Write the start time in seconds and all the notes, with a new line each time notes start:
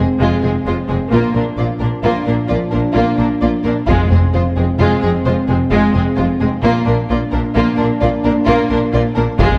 Already playing: G#3 C4
0.20 F1 F2 G#3 F4
0.43 F1 F2 G#3 C4 G#4
0.66 F1 F2 G#3 F4 C5
0.88 F1 F2 G#3 C4 G#4
1.11 A#1 A#2 F3 A#3 D4 F4
1.34 A#1 A#2 A#3 D4 A#4
1.57 A#1 A#2 A#3 F4 D5
1.80 A#1 A#2 A#3 D4 A#4
2.03 A#1 A#2 A#3 F4
2.25 A#1 A#2 A#3 D4 A#4
2.48 A#1 A#2 A#3 F4 D5
2.71 A#1 A#2 A#3 D4 A#4
2.94 A#1 A#2 A#3 F4
3.17 A#1 A#2 A#3 D4 A#4
3.41 A#1 A#2 A#3 F4 D5
3.64 A#1 A#2 A#3 D4 A#4
3.86 F1 F2 G#3 C4 F4, taiko
4.10 F1 F2 G#3 C4 G#4
4.33 F1 F2 G#3 F4 C5
4.56 F1 F2 G#3 C4 G#4
4.79 F1 F2 G#3 F4
5.02 F1 F2 G#3 C4 G#4
5.25 F1 F2 G#3 F4 C5
5.47 F1 F2 G#3 C4 G#4
5.71 F1 F2 G#3 F4
5.94 F1 F2 G#3 C4 G#4
6.16 F1 F2 G#3 F4 C5
6.40 F1 F2 G#3 C4 G#4
6.63 A#1 A#2 A#3 D4 F4
6.86 A#1 A#2 A#3 D4 A#4
7.10 A#1 A#2 A#3 F4 D5
7.32 A#1 A#2 A#3 D4 A#4
7.55 A#1 A#2 A#3 F4
7.77 A#1 A#2 A#3 D4 A#4
8.01 A#1 A#2 A#3 F4 D5
8.24 A#1 A#2 A#3 D4 A#4
8.46 A#1 A#2 A#3 F4
8.70 A#1 A#2 A#3 D4 A#4
8.93 A#1 A#2 A#3 F4 D5
9.15 A#1 A#2 A#3 D4 A#4
9.38 F1 F2 G#3 C4 F4, taiko